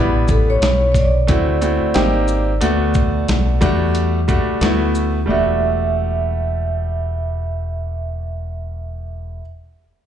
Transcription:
Already playing: fingered electric bass A1, grand piano G3 B3 D4 E4 F#4 B4
0.28 vibraphone A4, kick, shaker
0.50 vibraphone C#5
0.62 fingered electric bass B1, snare, closed hi-hat
0.92 vibraphone C#5, kick, shaker
0.96 vibraphone D5, snare
1.27 fingered electric bass D2, grand piano A3 C4 E4 F#4, kick, closed hi-hat
1.61 grand piano A3 C4 E4 F#4, closed hi-hat, shaker
1.81 muted fingered electric bass stroke
1.94 fingered electric bass G#1, grand piano A#3 C4 D#4 G4, snare, closed hi-hat
2.28 shaker
2.61 fingered electric bass D2, grand piano A3 B3 D4 F#4, closed hi-hat
2.94 kick, shaker
3.28 fingered electric bass B1, snare, closed hi-hat
3.61 fingered electric bass E2, grand piano G3 A3 D4 F#4, kick, closed hi-hat, shaker
3.95 closed hi-hat
4.28 grand piano G3 A3 D4 F#4, kick, shaker
4.61 fingered electric bass D2, grand piano A3 B3 E4 F#4, snare, closed hi-hat
4.95 shaker
5.26 fingered electric bass E1, grand piano G3 A3 D4
5.30 grand piano F#4, vibraphone E5

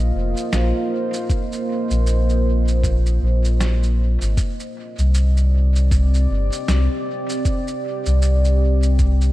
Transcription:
Already playing: sub bass A#1, ambient pad A#3 F4 C5 D#5
0.14 sub bass F1
0.37 shaker
0.53 sub bass A#1, snare, shaker
1.14 shaker
1.30 kick, shaker
1.52 shaker
1.90 sub bass A#1, shaker
2.07 shaker
2.29 shaker
2.68 shaker
2.83 kick, shaker
3.06 shaker
3.22 sub bass A#1
3.45 shaker
3.61 snare, shaker
3.83 shaker
4.21 sub bass G#1, shaker
4.37 ambient pad C4, kick, shaker
4.59 ambient pad G4, shaker
4.67 ambient pad D5
4.98 sub bass C2, shaker
5.14 shaker
5.37 shaker
5.76 shaker
5.91 kick, shaker
6.14 shaker
6.30 sub bass G1
6.52 shaker
6.68 sub bass C2, snare, shaker
7.29 shaker
7.45 kick, shaker
7.68 shaker
8.06 sub bass C2, shaker
8.22 shaker
8.45 shaker
8.83 shaker
8.99 kick, shaker
9.21 shaker

